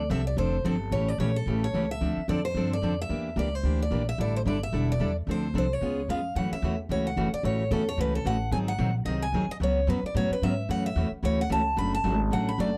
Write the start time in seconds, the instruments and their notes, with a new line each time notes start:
Already playing: steel-string acoustic guitar D5
0.10 upright bass C2, steel-string acoustic guitar D3 F3 C4 D4 A4 E5
0.27 steel-string acoustic guitar D5
0.37 upright bass F1, steel-string acoustic guitar D3 F3 C4 D4 A4 C5
0.64 upright bass G1, steel-string acoustic guitar D3 F3 C4 D4 A4
0.91 upright bass A1, steel-string acoustic guitar C#3 E3 A3 C#4 G4 C#5
1.08 steel-string acoustic guitar D5
1.18 upright bass A#1, steel-string acoustic guitar C#3 E3 A3 C#4 G4 C#5
1.36 steel-string acoustic guitar A4
1.46 upright bass A1, steel-string acoustic guitar C#3 E3 A3 C#4 G4
1.64 steel-string acoustic guitar C#5
1.73 upright bass C#2, steel-string acoustic guitar C#3 E3 A3 C#4 G4
1.91 steel-string acoustic guitar E5
2.01 upright bass D2, steel-string acoustic guitar D3 F3 C4 D4 A4
2.17 muted upright bass stroke
2.28 upright bass F2, steel-string acoustic guitar D3 F3 C4 D4 A4 D5
2.45 steel-string acoustic guitar C5
2.54 upright bass G2, steel-string acoustic guitar D3 F3 C4 D4 A4
2.73 steel-string acoustic guitar D5
2.82 upright bass F2, steel-string acoustic guitar D3 F3 C4 D4 A4
3.01 steel-string acoustic guitar E5
3.09 upright bass E2, steel-string acoustic guitar E3 A#3 D4 G4
3.36 upright bass C#2, steel-string acoustic guitar E3 A#3 D4 G4 D5
3.55 steel-string acoustic guitar C5
3.63 upright bass D2, steel-string acoustic guitar E3 A#3 D4 G4
3.82 steel-string acoustic guitar D5
3.91 upright bass A#1, steel-string acoustic guitar E3 A#3 D4 G4
4.09 steel-string acoustic guitar E5
4.18 upright bass A1, steel-string acoustic guitar D3 G3 D4 E4 A4 D5
4.36 steel-string acoustic guitar C5
4.45 upright bass G1, steel-string acoustic guitar D3 G3 D4 E4 A4 D5
4.63 steel-string acoustic guitar E5
4.72 upright bass E1, steel-string acoustic guitar D3 G3 D4 E4 A4
4.92 steel-string acoustic guitar D5
5.00 upright bass E2, steel-string acoustic guitar D3 G3 D4 E4 A4
5.27 upright bass D2, steel-string acoustic guitar D3 F3 C4 D4 A4
5.31 steel-string acoustic guitar C5
5.54 upright bass C2, steel-string acoustic guitar D3 F3 C4 D4 A4
5.58 steel-string acoustic guitar C5
5.73 steel-string acoustic guitar C#5
5.81 upright bass C#2, steel-string acoustic guitar C#3 G#3 B3 F4 G#4
6.08 upright bass F2, steel-string acoustic guitar C#3 G#3 B3 F4 G#4 F5
6.35 upright bass F#2, steel-string acoustic guitar C#3 E3 A3 C#4 F#4 F#5
6.51 steel-string acoustic guitar E5, muted upright bass stroke
6.62 upright bass E2, steel-string acoustic guitar C#3 E3 A3 C#4 F#4
6.89 upright bass C#2, steel-string acoustic guitar C#3 E3 A3 C#4 F#4 C#5
7.07 steel-string acoustic guitar F#5
7.17 upright bass F#1, steel-string acoustic guitar C#3 E3 A3 C#4 F#4
7.33 steel-string acoustic guitar D5, muted upright bass stroke
7.43 upright bass A1, steel-string acoustic guitar C#3 E3 A3 C#4 F#4 C#5
7.71 upright bass E2, steel-string acoustic guitar C#3 E3 A3 C#4 F#4 A4
7.89 steel-string acoustic guitar C#5
7.97 upright bass C#2, steel-string acoustic guitar C#3 E3 A3 C#4 F#4 B4
8.15 steel-string acoustic guitar A4
8.25 upright bass A1, steel-string acoustic guitar C#3 E3 A3 C#4 F#4 F#5
8.51 upright bass G#1, steel-string acoustic guitar D#3 F#3 C4 D#4 G#4 G#5
8.68 steel-string acoustic guitar F#5
8.78 upright bass A#1, steel-string acoustic guitar D#3 F#3 C4 D#4 G#4
9.05 upright bass C2, steel-string acoustic guitar D#3 F#3 C4 D#4 G#4 D#5
9.22 steel-string acoustic guitar G#5
9.32 upright bass D#2, steel-string acoustic guitar D#3 F#3 C4 D#4 G#4
9.48 steel-string acoustic guitar D#5, muted upright bass stroke
9.60 upright bass C#2, steel-string acoustic guitar C#3 F#3 B3 C#4 F#4 C#5
9.87 upright bass F#2, steel-string acoustic guitar C#3 F#3 B3 C#4 F#4 B4
10.03 steel-string acoustic guitar D5, muted upright bass stroke
10.15 upright bass A2, steel-string acoustic guitar C#3 F#3 B3 C#4 F#4 C#5
10.30 steel-string acoustic guitar B4, muted upright bass stroke
10.42 upright bass G#2, steel-string acoustic guitar C#3 F#3 B3 C#4 F#4 E5
10.69 upright bass F#2, steel-string acoustic guitar C#3 E3 A3 C#4 F#4 F#5
10.86 steel-string acoustic guitar E5
10.96 upright bass E2, steel-string acoustic guitar C#3 E3 A3 C#4 F#4
11.11 muted upright bass stroke
11.23 upright bass D2, steel-string acoustic guitar C#3 E3 A3 C#4 F#4 C#5
11.41 steel-string acoustic guitar F#5
11.50 upright bass C#2, steel-string acoustic guitar C#3 E3 A3 C#4 F#4 A5
11.77 upright bass F#1, steel-string acoustic guitar C#3 F#3 A3 D4 F#4 B5
11.95 steel-string acoustic guitar A5
12.04 upright bass G#1, steel-string acoustic guitar C#3 F#3 A3 D4 F#4
12.30 upright bass A1, steel-string acoustic guitar C#3 F#3 A3 D4 F#4 F#5
12.49 steel-string acoustic guitar B5
12.58 upright bass F#1, steel-string acoustic guitar C#3 F#3 A3 D4 F#4 D5